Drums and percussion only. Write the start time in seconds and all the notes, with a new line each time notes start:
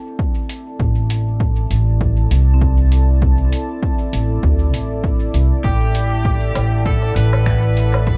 0.19 kick
0.49 closed hi-hat
0.80 kick
1.10 closed hi-hat
1.40 kick
1.71 closed hi-hat
2.01 kick
2.31 closed hi-hat
2.61 kick
2.92 closed hi-hat
3.22 kick
3.53 closed hi-hat
3.83 kick
4.13 closed hi-hat
4.43 kick
4.74 closed hi-hat
5.04 kick
5.34 closed hi-hat
5.64 kick
5.95 closed hi-hat
6.25 kick
6.55 closed hi-hat, low woodblock
6.86 kick
7.16 closed hi-hat
7.33 low woodblock
7.46 finger snap, kick
7.77 closed hi-hat
7.94 low woodblock
8.07 kick